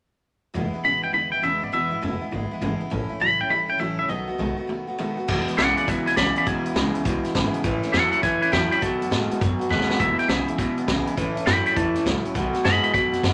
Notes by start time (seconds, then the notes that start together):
0.54 E1 E2 B2 E3 G#3 B3 E4
0.73 E3 G#3 B3 E4, muted upright bass stroke
0.84 A1 E2 B2 C#3 E3 G#3 B3 E4 B5
1.03 G#1 E3 G#3 B3 E4 G5
1.13 E1 E2 D3 E3 G#3 B3 E4 B5
1.32 G#1 E3 G#3 B3 E4 G5
1.43 E1 E2 B2 C#3 E3 G#3 B3 E4 E5
1.62 G#1 E3 G#3 B3 E4 D5
1.72 E1 E2 B2 E3 G#3 B3 E4 E5
1.91 G#1 E3 G#3 B3 E4
2.01 E1 E2 B2 C#3 E3 G#3 B3 E4
2.21 E3 G#3 B3 E4, muted upright bass stroke
2.31 G#1 E2 D3 E3 G#3 B3 E4
2.51 E3 G#3 B3 E4
2.61 G#1 E2 B2 C#3 E3 G#3 B3 E4
2.80 E3 G#3 B3 E4, muted upright bass stroke
2.90 A1 A2 E3 A3 C#4 E4
3.09 A3 C#4 E4, muted upright bass stroke
3.20 C#2 A2 E3 F#3 A3 C#4 E4 B5
3.39 C#2 A3 C#4 E4 G5
3.49 A1 A2 E3 G3 A3 C#4 E4 B5
3.68 C#2 A3 C#4 E4 G5
3.79 A1 A2 E3 F#3 A3 C#4 E4 E5
3.98 C#2 A3 C#4 E4 E5
4.09 B1 B2 D#3 F#3 A3 B3 F#4 D#5
4.28 D#2 A3 B3 F#4
4.38 B1 B2 D#3 G#3 A3 B3 F#4
4.57 A3 B3 F#4, muted upright bass stroke
4.67 B2 D#3 A3 B3 F#4
4.87 A3 B3 F#4
4.98 B2 D#3 G#3 A3 B3 F#4
5.17 A3 B3 F#4
5.28 E1 E2 B2 E3 G#3 B3 E4, kick, crash
5.46 E3 G#3 B3 E4, muted upright bass stroke, closed hi-hat
5.57 B1 E2 B2 C#3 E3 G#3 B3 E4 D5 F#5, snare, closed hi-hat
5.76 E3 G#3 B3 E4 D5 F#5, muted upright bass stroke, closed hi-hat
5.87 C#2 E2 B2 E3 G#3 B3 E4 B4 G#5, kick, snare, closed hi-hat
6.06 B1 E3 G#3 B3 E4 B4 G#5, snare, closed hi-hat
6.16 B1 E2 B2 C#3 E3 G#3 B3 E4 D5 B5, kick, snare, closed hi-hat
6.35 E3 G#3 B3 E4 D5 B5, muted upright bass stroke, closed hi-hat
6.45 E1 E2 B2 E3 G#3 B3 E4 G#5, kick, closed hi-hat
6.65 B1 E3 G#3 B3 E4, closed hi-hat
6.74 C#2 E2 B2 C#3 E3 G#3 B3 E4, snare, closed hi-hat
6.93 E3 G#3 B3 E4, closed hi-hat
7.04 B1 E2 B2 E3 G#3 B3 E4, kick, snare, closed hi-hat
7.23 E3 G#3 B3 E4, snare, closed hi-hat
7.34 G#1 E2 B2 C#3 E3 G#3 B3 E4, kick, snare, closed hi-hat
7.53 E3 G#3 B3 E4, closed hi-hat
7.64 A1 A2 E3 A3 C#4 E4, kick, closed hi-hat
7.83 A3 C#4 E4, muted upright bass stroke, snare, closed hi-hat
7.92 E2 A2 E3 F#3 A3 C#4 E4 A4 F#5, snare, closed hi-hat
8.11 A3 C#4 E4 A4 F#5, muted upright bass stroke, closed hi-hat
8.22 F#2 A2 E3 A3 C#4 B4 G#5, kick, snare, closed hi-hat
8.41 E2 A3 C#4 E4 B4 G#5, closed hi-hat
8.51 E2 A2 E3 F#3 A3 C#4 E4 G5 B5, kick, snare, closed hi-hat
8.70 A3 C#4 E4 G5 B5, muted upright bass stroke, closed hi-hat
8.80 B1 B2 D#3 F#3 A3 B3 F#4 A5, kick, closed hi-hat
9.00 F#2 A3 B3 F#4, closed hi-hat
9.10 A2 B2 D#3 G#3 A3 B3 F#4, snare, closed hi-hat
9.30 A3 B3 F#4, muted upright bass stroke, closed hi-hat
9.40 F#2 B2 D#3 F#3 A3 B3 F#4, kick, closed hi-hat
9.59 A3 B3 F#4, muted upright bass stroke, closed hi-hat
9.69 D#2 B2 D#3 G#3 A3 B3 F#4 B4, kick, snare
9.81 snare
9.88 A3 B3 F#4, muted upright bass stroke, snare
9.99 E1 E2 B2 E3 G#3 B3 E4 E5, kick, closed hi-hat
10.18 E3 G#3 B3 E4 G5, muted upright bass stroke, snare, closed hi-hat
10.28 B1 E2 B2 C#3 E3 G#3 B3 E4 E5, snare, closed hi-hat
10.47 E3 G#3 B3 E4, muted upright bass stroke, closed hi-hat
10.58 C#2 E2 B2 E3 G#3 B3 E4, kick, snare, closed hi-hat
10.76 B1 E3 G#3 B3 E4, closed hi-hat
10.88 B1 E2 B2 C#3 E3 G#3 B3 E4, kick, snare, closed hi-hat
11.06 E3 G#3 B3 E4, muted upright bass stroke, closed hi-hat
11.17 A1 A2 E3 A3 C#4 E4, kick, closed hi-hat
11.35 E2 A3 C#4 E4, closed hi-hat
11.46 F#2 A2 E3 F#3 A3 C#4 E4 G5 B5, snare, closed hi-hat
11.65 A3 C#4 E4 G5 B5, closed hi-hat
11.75 E2 A2 E3 A3 C#4 E4 A5, kick, closed hi-hat
11.94 A3 C#4 E4, muted upright bass stroke, snare, closed hi-hat
12.06 C#2 A2 E3 F#3 A3 C#4 E4, kick, snare, closed hi-hat
12.23 A3 C#4 E4, muted upright bass stroke, closed hi-hat
12.34 B1 B2 D#3 F#3 A3 B3 F#4, kick, closed hi-hat
12.53 A3 B3 F#4, snare, closed hi-hat
12.64 F#2 B2 D#3 G#3 A3 B3 F#4 D#5 B5, snare, closed hi-hat
12.83 A3 B3 F#4 D#5 B5, muted upright bass stroke, closed hi-hat
12.93 G#2 B2 D#3 F#3 A3 B3 F#4 B5, kick, snare, closed hi-hat
13.12 F#2 A3 B3 F#4, snare, closed hi-hat
13.23 F#2 B2 D#3 G#3 A3 B3 F#4, kick, snare, closed hi-hat